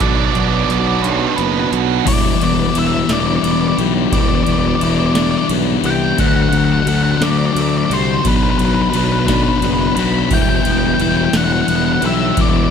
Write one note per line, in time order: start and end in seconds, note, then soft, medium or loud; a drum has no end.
0.00 0.28 B1 medium
0.00 2.04 B2 medium
0.00 1.72 B2 medium
0.00 2.05 F#3 medium
0.00 2.05 B3 medium
0.00 1.05 D4 medium
0.00 2.06 D4 medium
0.00 0.07 D5 medium
0.00 kick loud
0.00 closed hi-hat medium
0.08 0.15 D5 medium
0.16 0.24 D5 medium
0.26 0.31 D5 medium
0.32 0.63 B1 medium
0.32 0.69 F#3 medium
0.32 0.39 D5 medium
0.32 closed hi-hat medium
0.40 0.48 D5 medium
0.48 0.54 D5 medium
0.55 0.62 D5 medium
0.63 0.71 D5 medium
0.69 1.24 B1 medium
0.69 2.07 F#3 medium
0.69 0.79 D5 medium
0.69 closed hi-hat medium
0.80 0.87 D5 medium
0.87 0.94 D5 medium
0.95 1.03 D5 medium
1.02 2.07 D4 medium
1.02 1.10 B4 medium
1.02 1.11 D5 medium
1.02 closed hi-hat medium
1.11 1.17 B4 medium
1.11 1.18 D5 medium
1.18 1.26 B4 medium
1.18 1.25 D5 medium
1.26 1.35 B4 medium
1.26 1.34 D5 medium
1.36 1.66 F#1 medium
1.36 2.07 B3 medium
1.36 1.43 B4 medium
1.36 closed hi-hat medium
1.43 1.51 B4 medium
1.52 1.59 B4 medium
1.60 1.68 B4 medium
1.72 2.00 B1 medium
1.72 2.07 F#4 medium
1.72 closed hi-hat medium
2.05 2.34 E1 medium
2.05 2.74 E3 medium
2.05 2.75 E3 medium
2.05 2.75 G3 medium
2.05 2.75 B3 medium
2.05 2.76 E4 medium
2.05 2.43 D5 medium
2.05 kick loud
2.05 crash loud
2.05 ride medium
2.41 2.68 E1 medium
2.41 3.43 B3 medium
2.41 2.78 D5 medium
2.41 ride medium
2.75 3.03 E1 medium
2.75 3.08 E3 medium
2.75 4.12 E3 medium
2.75 3.09 G3 medium
2.75 3.10 B3 medium
2.75 3.10 E4 medium
2.75 ride medium
2.79 3.09 E5 medium
3.09 3.37 E1 medium
3.09 3.77 E3 medium
3.09 3.77 G3 medium
3.09 3.78 B3 medium
3.09 4.85 D4 medium
3.09 3.78 E4 medium
3.09 3.20 D5 medium
3.09 snare loud
3.09 ride medium
3.20 3.27 D5 medium
3.27 3.35 D5 medium
3.36 3.43 D5 medium
3.43 3.71 E1 medium
3.43 4.47 B3 medium
3.43 3.51 D5 medium
3.43 ride medium
3.52 3.59 D5 medium
3.61 3.68 D5 medium
3.68 3.76 D5 medium
3.78 4.06 B1 medium
3.78 4.11 E3 medium
3.78 4.11 G3 medium
3.78 4.12 B3 medium
3.78 4.12 E4 medium
3.78 5.50 G4 medium
3.78 ride medium
4.12 4.40 E1 medium
4.12 4.79 E3 medium
4.12 4.81 E3 medium
4.12 4.80 G3 medium
4.12 4.81 B3 loud
4.12 4.81 E4 medium
4.12 4.20 D5 loud
4.12 kick loud
4.12 ride medium
4.21 4.28 D5 medium
4.28 4.35 D5 medium
4.35 4.43 D5 medium
4.44 4.74 E1 medium
4.44 4.52 D5 loud
4.44 ride medium
4.48 5.50 B3 medium
4.53 4.59 D5 medium
4.59 4.67 D5 medium
4.68 4.75 D5 medium
4.75 4.83 D5 medium
4.80 5.36 E1 medium
4.80 5.14 E3 medium
4.80 6.19 E3 medium
4.80 5.15 G3 medium
4.80 5.15 B3 medium
4.80 5.16 E4 medium
4.80 4.90 D5 medium
4.80 ride medium
4.91 4.98 D5 medium
4.99 5.06 D5 medium
5.06 5.14 D5 loud
5.14 5.83 E3 medium
5.14 5.84 G3 medium
5.14 5.84 B3 medium
5.14 7.22 D4 medium
5.14 5.85 E4 loud
5.14 5.22 D5 medium
5.14 snare loud
5.14 ride medium
5.23 5.30 D5 medium
5.31 5.37 D5 medium
5.38 5.46 D5 medium
5.49 5.77 B1 medium
5.49 6.19 B3 medium
5.49 ride medium
5.84 6.11 C2 medium
5.84 6.17 E3 medium
5.84 6.17 G3 medium
5.84 6.17 B3 medium
5.84 6.18 E4 medium
5.84 6.19 G4 medium
5.84 6.19 G5 medium
5.84 ride medium
6.18 6.46 D2 medium
6.18 6.86 D3 medium
6.18 7.91 D3 medium
6.18 6.87 F#3 medium
6.18 6.87 A3 medium
6.18 6.88 D4 medium
6.18 6.27 F#5 loud
6.18 kick loud
6.18 ride medium
6.27 6.35 F#5 medium
6.36 6.42 F#5 medium
6.42 6.49 F#5 medium
6.49 6.80 D2 medium
6.49 6.57 F#5 medium
6.49 ride medium
6.53 6.87 F#3 medium
6.58 6.64 F#5 medium
6.65 6.72 F#5 medium
6.73 6.80 F#5 medium
6.81 6.88 F#5 medium
6.86 7.14 D2 medium
6.86 7.20 D3 medium
6.86 7.20 F#3 medium
6.86 8.25 F#3 medium
6.86 7.22 A3 medium
6.86 7.22 D4 medium
6.86 6.95 F#5 medium
6.86 ride medium
6.96 7.03 F#5 medium
7.03 7.11 F#5 medium
7.12 7.17 F#5 medium
7.17 7.49 D2 medium
7.17 7.88 D3 medium
7.17 7.25 F#5 medium
7.22 7.89 F#3 medium
7.22 7.89 A3 medium
7.22 9.28 D4 medium
7.22 7.90 D4 medium
7.22 7.30 D5 loud
7.22 snare loud
7.22 ride medium
7.30 7.38 D5 medium
7.38 7.46 D5 medium
7.46 7.53 D5 medium
7.54 7.83 D2 medium
7.54 8.25 A3 medium
7.54 7.61 D5 medium
7.54 ride medium
7.61 7.68 D5 medium
7.69 7.77 D5 medium
7.78 7.85 D5 medium
7.85 8.22 D3 loud
7.85 7.93 D5 medium
7.90 8.18 C2 medium
7.90 8.23 F#3 medium
7.90 8.23 A3 medium
7.90 8.25 D4 medium
7.90 8.25 F#4 medium
7.90 8.27 C5 medium
7.90 ride medium
8.24 8.52 B1 medium
8.24 8.91 B2 medium
8.24 9.97 B2 medium
8.24 8.92 F#3 medium
8.24 8.93 B3 medium
8.24 8.94 D4 medium
8.24 kick loud
8.24 ride loud
8.28 8.36 B4 medium
8.36 8.43 B4 medium
8.43 8.50 B4 medium
8.50 8.58 B4 medium
8.58 8.86 B1 medium
8.58 8.93 F#3 medium
8.58 8.65 B4 medium
8.58 ride medium
8.65 8.73 B4 medium
8.74 8.81 B4 medium
8.82 8.89 B4 medium
8.90 9.48 B1 medium
8.90 9.26 B2 medium
8.90 9.27 F#3 medium
8.90 10.31 F#3 medium
8.90 9.28 B3 medium
8.90 8.96 B4 medium
8.90 ride medium
8.94 9.29 D4 medium
8.94 9.04 B4 medium
9.04 9.12 B4 medium
9.12 9.19 B4 medium
9.20 9.26 B4 medium
9.27 9.95 B2 medium
9.27 9.96 F#3 medium
9.27 9.96 B3 medium
9.27 10.36 D4 medium
9.27 9.97 D4 medium
9.27 9.34 B4 medium
9.27 kick medium
9.27 snare loud
9.27 ride loud
9.34 9.42 B4 medium
9.43 9.48 B4 medium
9.49 9.56 B4 medium
9.58 9.65 B4 medium
9.62 9.90 F#1 medium
9.62 10.66 B3 medium
9.62 9.73 B4 medium
9.62 ride medium
9.74 9.81 B4 medium
9.81 9.87 B4 medium
9.87 9.95 B4 medium
9.96 10.24 B1 medium
9.96 10.29 B2 medium
9.96 10.29 F#3 medium
9.96 10.31 B3 medium
9.96 10.32 D4 loud
9.96 10.31 F#4 medium
9.96 10.03 B4 medium
9.96 10.30 B5 loud
9.96 ride medium
10.30 10.58 E1 medium
10.30 10.99 E3 medium
10.30 11.00 G3 medium
10.30 11.01 B3 medium
10.30 11.01 E4 loud
10.30 10.41 G5 loud
10.30 kick loud
10.30 crash medium
10.42 10.49 G5 medium
10.49 10.55 G5 medium
10.56 10.63 G5 medium
10.63 10.93 E1 medium
10.63 11.68 B3 medium
10.63 10.71 G5 loud
10.63 ride medium
10.72 10.78 G5 medium
10.78 10.86 G5 loud
10.87 10.94 G5 medium
10.94 11.01 G5 loud
11.00 11.27 E1 medium
11.00 11.31 E3 medium
11.00 12.37 E3 medium
11.00 11.32 G3 medium
11.00 11.33 B3 medium
11.00 11.34 E4 medium
11.00 11.08 G5 medium
11.00 ride medium
11.09 11.16 G5 medium
11.17 11.24 G5 medium
11.25 11.33 G5 medium
11.33 11.61 E1 medium
11.33 12.00 E3 medium
11.33 12.01 G3 medium
11.33 12.01 B3 loud
11.33 12.70 D4 medium
11.33 12.02 E4 medium
11.33 snare loud
11.33 ride loud
11.37 11.44 F#5 medium
11.44 11.52 F#5 medium
11.53 11.61 F#5 medium
11.62 11.68 F#5 medium
11.68 11.96 E1 medium
11.68 12.70 B3 medium
11.68 11.76 F#5 medium
11.68 ride medium
11.76 11.84 F#5 medium
11.85 11.92 F#5 medium
11.93 12.01 F#5 medium
12.02 12.30 B1 medium
12.02 12.35 E3 medium
12.02 12.36 G3 medium
12.02 12.37 B3 medium
12.02 12.37 E4 loud
12.02 12.70 G4 medium
12.02 ride medium
12.06 12.40 E5 medium
12.37 12.65 E1 medium
12.37 12.70 E3 medium
12.37 12.70 G3 medium
12.37 12.70 B3 loud
12.37 12.70 E4 medium
12.37 kick loud
12.37 ride medium
12.41 12.49 D5 medium
12.49 12.56 D5 medium
12.57 12.63 D5 medium
12.64 12.70 D5 medium